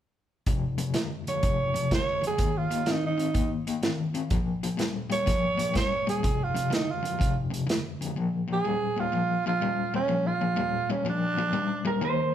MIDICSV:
0, 0, Header, 1, 5, 480
1, 0, Start_track
1, 0, Tempo, 481541
1, 463, Time_signature, 4, 2, 24, 8
1, 12305, End_track
2, 0, Start_track
2, 0, Title_t, "Clean electric guitar"
2, 0, Program_c, 0, 27
2, 11833, Note_on_c, 0, 70, 73
2, 11983, Note_off_c, 0, 70, 0
2, 12009, Note_on_c, 0, 72, 84
2, 12305, Note_off_c, 0, 72, 0
2, 12305, End_track
3, 0, Start_track
3, 0, Title_t, "Tenor saxophone"
3, 0, Program_c, 1, 66
3, 1282, Note_on_c, 1, 73, 75
3, 1893, Note_off_c, 1, 73, 0
3, 1936, Note_on_c, 1, 73, 85
3, 2229, Note_off_c, 1, 73, 0
3, 2262, Note_on_c, 1, 68, 78
3, 2564, Note_on_c, 1, 65, 75
3, 2579, Note_off_c, 1, 68, 0
3, 2908, Note_on_c, 1, 63, 82
3, 2923, Note_off_c, 1, 65, 0
3, 3040, Note_off_c, 1, 63, 0
3, 3051, Note_on_c, 1, 63, 87
3, 3502, Note_off_c, 1, 63, 0
3, 5107, Note_on_c, 1, 73, 86
3, 5725, Note_off_c, 1, 73, 0
3, 5749, Note_on_c, 1, 73, 88
3, 6055, Note_off_c, 1, 73, 0
3, 6072, Note_on_c, 1, 68, 72
3, 6412, Note_on_c, 1, 65, 84
3, 6427, Note_off_c, 1, 68, 0
3, 6721, Note_on_c, 1, 63, 83
3, 6736, Note_off_c, 1, 65, 0
3, 6884, Note_on_c, 1, 65, 71
3, 6899, Note_off_c, 1, 63, 0
3, 7338, Note_off_c, 1, 65, 0
3, 8498, Note_on_c, 1, 68, 85
3, 8967, Note_on_c, 1, 65, 78
3, 8982, Note_off_c, 1, 68, 0
3, 9420, Note_off_c, 1, 65, 0
3, 9440, Note_on_c, 1, 65, 77
3, 9896, Note_off_c, 1, 65, 0
3, 9923, Note_on_c, 1, 61, 85
3, 10239, Note_on_c, 1, 65, 75
3, 10253, Note_off_c, 1, 61, 0
3, 10883, Note_on_c, 1, 61, 67
3, 10898, Note_off_c, 1, 65, 0
3, 11027, Note_off_c, 1, 61, 0
3, 11058, Note_on_c, 1, 62, 86
3, 11972, Note_off_c, 1, 62, 0
3, 12305, End_track
4, 0, Start_track
4, 0, Title_t, "Overdriven electric guitar"
4, 0, Program_c, 2, 29
4, 470, Note_on_c, 2, 41, 72
4, 472, Note_on_c, 2, 48, 73
4, 756, Note_off_c, 2, 41, 0
4, 757, Note_off_c, 2, 48, 0
4, 777, Note_on_c, 2, 41, 64
4, 782, Note_on_c, 2, 48, 72
4, 923, Note_off_c, 2, 41, 0
4, 925, Note_off_c, 2, 48, 0
4, 934, Note_on_c, 2, 41, 69
4, 936, Note_on_c, 2, 50, 85
4, 1228, Note_off_c, 2, 41, 0
4, 1229, Note_off_c, 2, 50, 0
4, 1277, Note_on_c, 2, 41, 62
4, 1279, Note_on_c, 2, 50, 64
4, 1412, Note_off_c, 2, 41, 0
4, 1413, Note_off_c, 2, 50, 0
4, 1424, Note_on_c, 2, 41, 76
4, 1425, Note_on_c, 2, 48, 74
4, 1713, Note_off_c, 2, 41, 0
4, 1713, Note_off_c, 2, 48, 0
4, 1736, Note_on_c, 2, 41, 68
4, 1738, Note_on_c, 2, 48, 71
4, 1882, Note_off_c, 2, 41, 0
4, 1883, Note_off_c, 2, 48, 0
4, 1906, Note_on_c, 2, 41, 65
4, 1912, Note_on_c, 2, 50, 87
4, 2193, Note_off_c, 2, 41, 0
4, 2197, Note_off_c, 2, 50, 0
4, 2208, Note_on_c, 2, 41, 62
4, 2210, Note_on_c, 2, 50, 66
4, 2358, Note_off_c, 2, 41, 0
4, 2359, Note_off_c, 2, 50, 0
4, 2375, Note_on_c, 2, 58, 80
4, 2377, Note_on_c, 2, 51, 79
4, 2668, Note_off_c, 2, 58, 0
4, 2669, Note_off_c, 2, 51, 0
4, 2696, Note_on_c, 2, 51, 64
4, 2700, Note_on_c, 2, 58, 67
4, 2842, Note_off_c, 2, 51, 0
4, 2844, Note_off_c, 2, 58, 0
4, 2855, Note_on_c, 2, 51, 67
4, 2863, Note_on_c, 2, 60, 84
4, 3148, Note_off_c, 2, 51, 0
4, 3152, Note_off_c, 2, 60, 0
4, 3166, Note_on_c, 2, 51, 56
4, 3167, Note_on_c, 2, 60, 71
4, 3316, Note_off_c, 2, 51, 0
4, 3317, Note_off_c, 2, 60, 0
4, 3331, Note_on_c, 2, 51, 70
4, 3331, Note_on_c, 2, 58, 86
4, 3626, Note_off_c, 2, 51, 0
4, 3626, Note_off_c, 2, 58, 0
4, 3659, Note_on_c, 2, 51, 60
4, 3663, Note_on_c, 2, 58, 73
4, 3803, Note_off_c, 2, 51, 0
4, 3805, Note_off_c, 2, 58, 0
4, 3814, Note_on_c, 2, 51, 70
4, 3820, Note_on_c, 2, 60, 69
4, 4107, Note_off_c, 2, 51, 0
4, 4110, Note_off_c, 2, 60, 0
4, 4129, Note_on_c, 2, 51, 67
4, 4135, Note_on_c, 2, 60, 80
4, 4278, Note_off_c, 2, 51, 0
4, 4281, Note_off_c, 2, 60, 0
4, 4295, Note_on_c, 2, 46, 74
4, 4297, Note_on_c, 2, 53, 82
4, 4587, Note_off_c, 2, 46, 0
4, 4588, Note_off_c, 2, 53, 0
4, 4618, Note_on_c, 2, 53, 68
4, 4621, Note_on_c, 2, 46, 65
4, 4746, Note_off_c, 2, 46, 0
4, 4758, Note_on_c, 2, 46, 78
4, 4762, Note_off_c, 2, 53, 0
4, 4771, Note_on_c, 2, 55, 76
4, 5059, Note_off_c, 2, 46, 0
4, 5065, Note_off_c, 2, 55, 0
4, 5080, Note_on_c, 2, 46, 65
4, 5082, Note_on_c, 2, 55, 71
4, 5233, Note_off_c, 2, 46, 0
4, 5235, Note_off_c, 2, 55, 0
4, 5246, Note_on_c, 2, 46, 75
4, 5254, Note_on_c, 2, 53, 74
4, 5543, Note_off_c, 2, 46, 0
4, 5547, Note_off_c, 2, 53, 0
4, 5558, Note_on_c, 2, 46, 76
4, 5564, Note_on_c, 2, 53, 74
4, 5707, Note_off_c, 2, 46, 0
4, 5715, Note_off_c, 2, 53, 0
4, 5719, Note_on_c, 2, 46, 69
4, 5722, Note_on_c, 2, 55, 82
4, 6020, Note_off_c, 2, 46, 0
4, 6021, Note_off_c, 2, 55, 0
4, 6050, Note_on_c, 2, 46, 68
4, 6053, Note_on_c, 2, 55, 76
4, 6199, Note_off_c, 2, 46, 0
4, 6200, Note_off_c, 2, 55, 0
4, 6212, Note_on_c, 2, 48, 83
4, 6214, Note_on_c, 2, 41, 73
4, 6506, Note_off_c, 2, 48, 0
4, 6507, Note_off_c, 2, 41, 0
4, 6525, Note_on_c, 2, 41, 61
4, 6532, Note_on_c, 2, 48, 75
4, 6669, Note_off_c, 2, 41, 0
4, 6679, Note_off_c, 2, 48, 0
4, 6681, Note_on_c, 2, 41, 76
4, 6687, Note_on_c, 2, 50, 80
4, 6981, Note_off_c, 2, 41, 0
4, 6984, Note_off_c, 2, 50, 0
4, 7005, Note_on_c, 2, 41, 66
4, 7017, Note_on_c, 2, 50, 70
4, 7153, Note_off_c, 2, 41, 0
4, 7162, Note_off_c, 2, 50, 0
4, 7165, Note_on_c, 2, 41, 74
4, 7175, Note_on_c, 2, 48, 84
4, 7463, Note_off_c, 2, 41, 0
4, 7468, Note_off_c, 2, 48, 0
4, 7480, Note_on_c, 2, 41, 63
4, 7487, Note_on_c, 2, 48, 72
4, 7630, Note_off_c, 2, 41, 0
4, 7637, Note_off_c, 2, 48, 0
4, 7642, Note_on_c, 2, 41, 71
4, 7645, Note_on_c, 2, 50, 76
4, 7941, Note_off_c, 2, 41, 0
4, 7943, Note_off_c, 2, 50, 0
4, 7984, Note_on_c, 2, 41, 63
4, 7985, Note_on_c, 2, 50, 77
4, 8125, Note_off_c, 2, 41, 0
4, 8126, Note_off_c, 2, 50, 0
4, 8137, Note_on_c, 2, 46, 75
4, 8147, Note_on_c, 2, 53, 85
4, 8429, Note_off_c, 2, 46, 0
4, 8434, Note_off_c, 2, 53, 0
4, 8450, Note_on_c, 2, 46, 59
4, 8457, Note_on_c, 2, 53, 80
4, 8598, Note_off_c, 2, 46, 0
4, 8602, Note_off_c, 2, 53, 0
4, 8619, Note_on_c, 2, 46, 77
4, 8619, Note_on_c, 2, 55, 93
4, 8909, Note_off_c, 2, 46, 0
4, 8910, Note_off_c, 2, 55, 0
4, 8937, Note_on_c, 2, 46, 65
4, 8948, Note_on_c, 2, 55, 78
4, 9082, Note_off_c, 2, 46, 0
4, 9087, Note_off_c, 2, 55, 0
4, 9093, Note_on_c, 2, 46, 75
4, 9102, Note_on_c, 2, 53, 83
4, 9387, Note_off_c, 2, 46, 0
4, 9391, Note_off_c, 2, 53, 0
4, 9430, Note_on_c, 2, 46, 68
4, 9439, Note_on_c, 2, 53, 80
4, 9569, Note_off_c, 2, 46, 0
4, 9573, Note_off_c, 2, 53, 0
4, 9584, Note_on_c, 2, 46, 69
4, 9589, Note_on_c, 2, 55, 80
4, 9872, Note_off_c, 2, 46, 0
4, 9875, Note_off_c, 2, 55, 0
4, 9906, Note_on_c, 2, 46, 66
4, 9908, Note_on_c, 2, 55, 81
4, 10038, Note_off_c, 2, 46, 0
4, 10048, Note_off_c, 2, 55, 0
4, 10050, Note_on_c, 2, 46, 79
4, 10057, Note_on_c, 2, 53, 83
4, 10345, Note_off_c, 2, 46, 0
4, 10349, Note_off_c, 2, 53, 0
4, 10379, Note_on_c, 2, 46, 66
4, 10383, Note_on_c, 2, 53, 67
4, 10517, Note_off_c, 2, 46, 0
4, 10525, Note_off_c, 2, 53, 0
4, 10529, Note_on_c, 2, 46, 85
4, 10536, Note_on_c, 2, 55, 97
4, 10825, Note_off_c, 2, 46, 0
4, 10828, Note_off_c, 2, 55, 0
4, 10861, Note_on_c, 2, 46, 65
4, 10865, Note_on_c, 2, 55, 71
4, 11002, Note_off_c, 2, 46, 0
4, 11006, Note_off_c, 2, 55, 0
4, 11014, Note_on_c, 2, 46, 77
4, 11024, Note_on_c, 2, 53, 89
4, 11307, Note_off_c, 2, 46, 0
4, 11313, Note_off_c, 2, 53, 0
4, 11337, Note_on_c, 2, 46, 70
4, 11348, Note_on_c, 2, 53, 76
4, 11480, Note_off_c, 2, 46, 0
4, 11488, Note_off_c, 2, 53, 0
4, 11492, Note_on_c, 2, 46, 84
4, 11495, Note_on_c, 2, 55, 83
4, 11786, Note_off_c, 2, 46, 0
4, 11788, Note_off_c, 2, 55, 0
4, 11810, Note_on_c, 2, 46, 62
4, 11816, Note_on_c, 2, 55, 78
4, 11959, Note_off_c, 2, 46, 0
4, 11962, Note_off_c, 2, 55, 0
4, 11976, Note_on_c, 2, 51, 80
4, 11985, Note_on_c, 2, 58, 81
4, 12269, Note_off_c, 2, 51, 0
4, 12273, Note_off_c, 2, 58, 0
4, 12305, End_track
5, 0, Start_track
5, 0, Title_t, "Drums"
5, 462, Note_on_c, 9, 42, 78
5, 465, Note_on_c, 9, 36, 95
5, 562, Note_off_c, 9, 42, 0
5, 565, Note_off_c, 9, 36, 0
5, 779, Note_on_c, 9, 42, 59
5, 879, Note_off_c, 9, 42, 0
5, 935, Note_on_c, 9, 42, 71
5, 942, Note_on_c, 9, 38, 87
5, 1034, Note_off_c, 9, 42, 0
5, 1041, Note_off_c, 9, 38, 0
5, 1268, Note_on_c, 9, 42, 55
5, 1368, Note_off_c, 9, 42, 0
5, 1423, Note_on_c, 9, 42, 75
5, 1428, Note_on_c, 9, 36, 88
5, 1523, Note_off_c, 9, 42, 0
5, 1527, Note_off_c, 9, 36, 0
5, 1750, Note_on_c, 9, 42, 59
5, 1850, Note_off_c, 9, 42, 0
5, 1907, Note_on_c, 9, 36, 71
5, 1907, Note_on_c, 9, 42, 77
5, 1914, Note_on_c, 9, 38, 102
5, 2007, Note_off_c, 9, 36, 0
5, 2007, Note_off_c, 9, 42, 0
5, 2014, Note_off_c, 9, 38, 0
5, 2229, Note_on_c, 9, 42, 54
5, 2329, Note_off_c, 9, 42, 0
5, 2377, Note_on_c, 9, 42, 79
5, 2383, Note_on_c, 9, 36, 98
5, 2476, Note_off_c, 9, 42, 0
5, 2482, Note_off_c, 9, 36, 0
5, 2705, Note_on_c, 9, 42, 58
5, 2804, Note_off_c, 9, 42, 0
5, 2852, Note_on_c, 9, 42, 68
5, 2859, Note_on_c, 9, 38, 90
5, 2952, Note_off_c, 9, 42, 0
5, 2959, Note_off_c, 9, 38, 0
5, 3183, Note_on_c, 9, 42, 52
5, 3283, Note_off_c, 9, 42, 0
5, 3335, Note_on_c, 9, 42, 72
5, 3338, Note_on_c, 9, 36, 94
5, 3434, Note_off_c, 9, 42, 0
5, 3437, Note_off_c, 9, 36, 0
5, 3660, Note_on_c, 9, 42, 54
5, 3760, Note_off_c, 9, 42, 0
5, 3815, Note_on_c, 9, 42, 77
5, 3822, Note_on_c, 9, 38, 102
5, 3914, Note_off_c, 9, 42, 0
5, 3921, Note_off_c, 9, 38, 0
5, 4133, Note_on_c, 9, 42, 50
5, 4233, Note_off_c, 9, 42, 0
5, 4290, Note_on_c, 9, 42, 72
5, 4295, Note_on_c, 9, 36, 105
5, 4390, Note_off_c, 9, 42, 0
5, 4395, Note_off_c, 9, 36, 0
5, 4619, Note_on_c, 9, 42, 59
5, 4719, Note_off_c, 9, 42, 0
5, 4775, Note_on_c, 9, 42, 68
5, 4782, Note_on_c, 9, 38, 85
5, 4875, Note_off_c, 9, 42, 0
5, 4882, Note_off_c, 9, 38, 0
5, 5098, Note_on_c, 9, 42, 54
5, 5198, Note_off_c, 9, 42, 0
5, 5254, Note_on_c, 9, 42, 75
5, 5257, Note_on_c, 9, 36, 97
5, 5261, Note_on_c, 9, 38, 29
5, 5354, Note_off_c, 9, 42, 0
5, 5357, Note_off_c, 9, 36, 0
5, 5360, Note_off_c, 9, 38, 0
5, 5574, Note_on_c, 9, 42, 59
5, 5674, Note_off_c, 9, 42, 0
5, 5734, Note_on_c, 9, 42, 79
5, 5737, Note_on_c, 9, 36, 77
5, 5741, Note_on_c, 9, 38, 100
5, 5834, Note_off_c, 9, 42, 0
5, 5837, Note_off_c, 9, 36, 0
5, 5841, Note_off_c, 9, 38, 0
5, 6069, Note_on_c, 9, 42, 55
5, 6169, Note_off_c, 9, 42, 0
5, 6220, Note_on_c, 9, 42, 77
5, 6222, Note_on_c, 9, 36, 94
5, 6319, Note_off_c, 9, 42, 0
5, 6322, Note_off_c, 9, 36, 0
5, 6542, Note_on_c, 9, 42, 60
5, 6642, Note_off_c, 9, 42, 0
5, 6703, Note_on_c, 9, 42, 71
5, 6710, Note_on_c, 9, 38, 96
5, 6803, Note_off_c, 9, 42, 0
5, 6810, Note_off_c, 9, 38, 0
5, 7029, Note_on_c, 9, 42, 54
5, 7129, Note_off_c, 9, 42, 0
5, 7185, Note_on_c, 9, 36, 99
5, 7189, Note_on_c, 9, 42, 71
5, 7285, Note_off_c, 9, 36, 0
5, 7288, Note_off_c, 9, 42, 0
5, 7513, Note_on_c, 9, 42, 58
5, 7612, Note_off_c, 9, 42, 0
5, 7669, Note_on_c, 9, 42, 74
5, 7676, Note_on_c, 9, 38, 103
5, 7768, Note_off_c, 9, 42, 0
5, 7775, Note_off_c, 9, 38, 0
5, 7993, Note_on_c, 9, 42, 55
5, 8093, Note_off_c, 9, 42, 0
5, 12305, End_track
0, 0, End_of_file